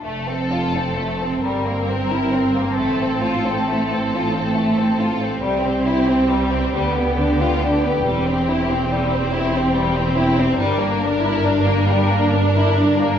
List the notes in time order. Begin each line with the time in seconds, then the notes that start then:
0.04 F1 F2 A3 C4 A4
0.29 C4
0.53 F4
0.76 C4
0.98 A3
1.21 C4
1.44 G1 G2 G3 A#4
1.66 A#3
1.89 C4
2.12 E4
2.34 C4
2.57 A#3
2.79 A1 A2 A3 A4
3.02 C4
3.24 F4
3.47 C4
3.70 A3
3.93 C4
4.16 F4
4.37 C4
4.58 A3
4.80 C4
5.01 F4
5.22 C4
5.43 C2 C3 G3 C4 G4
5.65 C4
5.87 E4
6.09 C4
6.30 G3
6.53 C4
6.75 D2 D3 G3 B3
6.98 B3
7.20 D4
7.42 F4
7.64 D4
7.85 B3
8.06 E1 E2 G3 C4
8.28 C4
8.49 E4
8.71 C4
8.93 G3
9.14 C4
9.35 E4
9.55 C4
9.76 G3
9.98 C4
10.18 E4
10.39 C4
10.60 G1 G2 G3 D4 A#4
10.81 A#3
11.03 D4
11.24 E4
11.44 D4
11.67 A#3
11.90 G3
12.11 A#3
12.33 D4
12.56 E4
12.78 D4
13.00 A#3